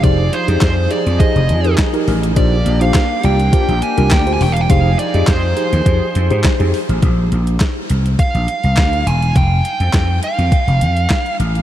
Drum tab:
HH |x-xxx-xxxxxxxxox|x-xxx-xxxxxxxxox|x-xxx-xxx-xxxxox|x-xxx-xxxxxxxxxx|
CP |----x-------x---|----x-------x---|----x-------x---|----x-------x---|
SD |----o-------o---|----o-------o---|----o-------o---|----o-------o---|
BD |o---o---o---o---|o---o---o---o---|o---o---o---o---|o---o---o---o---|

HH |x-xxx-xxxxxxxxxx|
CP |----x-------x---|
SD |----o-------o---|
BD |o---o---o---o---|